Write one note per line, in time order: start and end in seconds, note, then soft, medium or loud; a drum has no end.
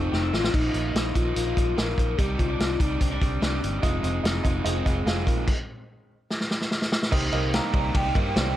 0.00 0.52 F3 medium
0.00 0.58 C4 medium
0.00 0.33 C4 medium
0.00 0.35 D#4 medium
0.00 0.32 F4 medium
0.00 0.33 F4 medium
0.00 0.12 A4 medium
0.04 0.32 A3 soft
0.12 0.30 F1 medium
0.12 0.23 G4 medium
0.12 snare medium
0.23 0.58 A4 medium
0.32 0.50 A1 medium
0.32 0.53 F3 medium
0.32 0.53 A3 medium
0.32 0.54 C4 medium
0.32 0.54 F4 medium
0.32 0.53 F4 medium
0.32 0.54 F4 medium
0.32 snare medium
0.44 snare medium
0.53 0.71 A#1 loud
0.53 0.84 A#2 medium
0.53 0.85 D#3 medium
0.53 1.14 F3 medium
0.53 0.85 A#3 medium
0.53 0.73 D#4 medium
0.53 0.95 D#4 medium
0.53 0.84 D#4 medium
0.53 0.82 F4 medium
0.53 kick loud
0.53 crash medium
0.74 0.91 A#1 medium
0.74 1.35 A#3 medium
0.74 1.17 D#4 medium
0.74 closed hi-hat medium
0.84 1.14 A#3 soft
0.84 1.15 D#4 soft
0.84 1.15 F4 soft
0.95 1.12 A#1 medium
0.95 2.19 D#4 medium
0.95 snare loud
0.95 closed hi-hat medium
1.14 1.32 A#1 medium
1.14 1.46 D#3 medium
1.14 1.56 F3 medium
1.14 1.47 A#3 medium
1.14 1.46 D#4 medium
1.14 1.35 F4 medium
1.14 1.44 F4 medium
1.14 kick loud
1.14 closed hi-hat medium
1.35 1.53 A#1 loud
1.35 1.76 A#3 medium
1.35 1.78 F4 loud
1.35 closed hi-hat medium
1.45 1.76 A#3 soft
1.45 1.77 D#4 medium
1.45 1.77 F4 medium
1.57 1.74 A#1 loud
1.57 1.97 F3 medium
1.57 kick medium
1.57 closed hi-hat medium
1.76 1.94 A#1 medium
1.76 2.18 D#3 medium
1.76 2.23 A#3 medium
1.76 2.18 A#3 medium
1.76 2.19 D#4 medium
1.76 2.19 F4 medium
1.76 2.19 A#4 loud
1.76 snare loud
1.76 closed hi-hat medium
1.98 2.15 A#1 medium
1.98 2.18 F3 medium
1.98 kick medium
1.98 closed hi-hat medium
2.18 2.35 C2 loud
2.18 2.49 C3 medium
2.18 2.49 G3 medium
2.18 2.80 G3 medium
2.18 2.50 C4 medium
2.18 3.14 D#4 medium
2.18 2.49 D#4 medium
2.18 2.40 G4 loud
2.18 2.48 G4 medium
2.18 2.47 D5 medium
2.18 kick loud
2.18 closed hi-hat medium
2.38 2.56 C2 medium
2.38 2.50 C4 medium
2.38 2.59 F4 loud
2.38 kick medium
2.38 closed hi-hat medium
2.48 2.78 C4 soft
2.48 3.01 D4 soft
2.48 2.79 D#4 soft
2.48 2.80 G4 soft
2.48 2.80 D5 soft
2.59 2.76 C2 medium
2.59 2.81 F4 medium
2.59 snare loud
2.59 closed hi-hat medium
2.79 2.97 C2 loud
2.79 3.21 G3 medium
2.79 3.11 C4 medium
2.79 3.02 D#4 medium
2.79 3.11 D#4 medium
2.79 3.10 G4 medium
2.79 3.09 D5 medium
2.79 kick loud
2.79 closed hi-hat medium
3.00 3.18 C2 medium
3.00 3.11 C4 medium
3.00 3.62 D4 medium
3.00 kick medium
3.00 closed hi-hat medium
3.10 3.39 C4 soft
3.10 3.41 D4 medium
3.10 3.42 G4 medium
3.10 3.42 D5 medium
3.21 3.38 C2 loud
3.21 3.62 G3 medium
3.21 kick medium
3.21 closed hi-hat medium
3.41 3.59 C2 loud
3.41 3.82 C4 medium
3.41 3.88 D4 medium
3.41 3.83 D#4 medium
3.41 3.84 G4 medium
3.41 3.84 D5 medium
3.41 snare loud
3.41 closed hi-hat medium
3.63 3.79 G1 medium
3.63 3.83 G3 medium
3.63 closed hi-hat medium
3.82 4.00 F1 loud
3.82 4.14 F3 medium
3.82 4.45 G#3 medium
3.82 4.14 C4 medium
3.82 4.23 D#4 medium
3.82 4.14 D#4 medium
3.82 4.02 F4 loud
3.82 4.02 G#4 loud
3.82 4.12 G#4 medium
3.82 4.02 D#5 loud
3.82 kick loud
3.82 closed hi-hat medium
4.03 4.20 F1 loud
4.03 4.65 C4 medium
4.03 4.21 F4 medium
4.03 4.21 G#4 medium
4.03 4.22 D#5 medium
4.03 closed hi-hat medium
4.13 4.44 C4 soft
4.13 4.45 D#4 soft
4.13 4.45 G#4 medium
4.23 4.41 F1 loud
4.23 5.52 D#4 medium
4.23 4.42 F4 medium
4.23 4.42 G#4 medium
4.23 4.42 D#5 medium
4.23 snare loud
4.23 closed hi-hat medium
4.43 4.61 F1 loud
4.43 4.75 F3 medium
4.43 4.86 G#3 medium
4.43 4.76 C4 medium
4.43 4.76 D#4 medium
4.43 4.63 F4 medium
4.43 4.63 G#4 medium
4.43 4.74 G#4 medium
4.43 4.63 D#5 loud
4.43 kick loud
4.43 closed hi-hat medium
4.64 4.82 F1 loud
4.64 5.05 C4 medium
4.64 4.84 F4 loud
4.64 4.84 G#4 loud
4.64 4.84 D#5 loud
4.64 closed hi-hat medium
4.75 5.06 C4 medium
4.75 5.07 D#4 medium
4.75 5.06 G#4 medium
4.85 5.03 F1 medium
4.85 5.26 G#3 medium
4.85 5.04 F4 medium
4.85 5.04 G#4 medium
4.85 5.05 D#5 medium
4.85 kick medium
4.85 closed hi-hat medium
5.06 5.23 F1 loud
5.06 5.48 F3 medium
5.06 5.52 C4 medium
5.06 5.48 C4 medium
5.06 5.49 D#4 medium
5.06 5.24 F4 medium
5.06 5.24 G#4 medium
5.06 5.49 G#4 medium
5.06 5.25 F5 loud
5.06 snare loud
5.06 closed hi-hat medium
5.26 5.44 A#1 medium
5.26 5.52 G#3 medium
5.26 5.45 F4 medium
5.26 5.45 G#4 medium
5.26 5.45 A#4 loud
5.26 kick medium
5.26 closed hi-hat medium
5.48 kick loud
5.48 crash medium
6.31 snare medium
6.41 snare medium
6.51 snare medium
6.61 snare medium
6.71 snare medium
6.82 snare medium
6.92 snare loud
7.03 snare medium
7.11 7.29 C2 loud
7.11 7.74 C3 medium
7.11 8.57 D#3 medium
7.11 7.73 G3 medium
7.11 7.74 A#3 medium
7.11 7.75 D#4 medium
7.11 7.31 G4 loud
7.11 7.76 G4 medium
7.11 7.31 A#4 loud
7.11 7.31 C5 loud
7.11 7.31 D#5 loud
7.11 kick loud
7.11 crash loud
7.32 7.58 C2 loud
7.32 8.14 A#3 medium
7.32 7.51 G4 loud
7.32 7.51 A#4 loud
7.32 7.52 C5 loud
7.32 7.52 D#5 loud
7.32 ride soft
7.53 7.72 G4 medium
7.53 7.94 G4 medium
7.53 7.72 A#4 medium
7.53 7.72 C5 medium
7.53 7.72 F5 medium
7.53 7.97 A#5 loud
7.53 snare loud
7.53 ride medium
7.73 7.91 C2 medium
7.73 8.04 G3 medium
7.73 8.05 A#3 medium
7.73 8.35 C4 medium
7.73 8.05 D#4 medium
7.73 7.93 G4 medium
7.73 8.03 G4 medium
7.73 7.93 A#4 medium
7.73 7.93 C5 medium
7.73 7.93 D5 medium
7.73 kick loud
7.73 ride medium
7.95 8.11 C2 loud
7.95 8.57 G4 medium
7.95 8.13 G4 medium
7.95 8.13 A#4 medium
7.95 8.14 C5 medium
7.95 8.14 D5 medium
7.95 8.57 G5 loud
7.95 kick medium
7.95 ride medium
8.04 8.14 A#3 soft
8.04 8.15 D#4 medium
8.04 8.15 G4 medium
8.14 8.32 G2 medium
8.14 8.34 G3 medium
8.14 8.56 A#3 medium
8.14 8.35 A#3 medium
8.14 8.36 D#4 medium
8.14 8.34 G4 medium
8.14 8.37 G4 medium
8.14 8.34 A#4 medium
8.14 8.34 C5 medium
8.14 8.34 D#5 medium
8.14 kick medium
8.14 ride medium
8.35 8.53 C2 medium
8.35 8.54 G3 medium
8.35 8.55 A#3 medium
8.35 8.57 C4 medium
8.35 8.57 D#4 medium
8.35 8.55 G4 loud
8.35 8.57 G4 medium
8.35 8.55 A#4 medium
8.35 8.55 C5 medium
8.35 8.55 D5 loud
8.35 snare loud
8.35 ride medium